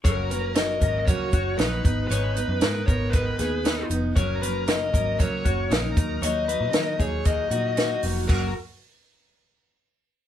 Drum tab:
CC |--------|--------|--------|--------|
HH |xxxxxxxx|xxxxxxxx|xxxxxxxx|xxxxxxxo|
SD |--o---o-|--o--oo-|--o---o-|--o---o-|
BD |o--ooo-o|---oo---|o--ooo-o|---oo---|

CC |x-------|
HH |--------|
SD |--------|
BD |o-------|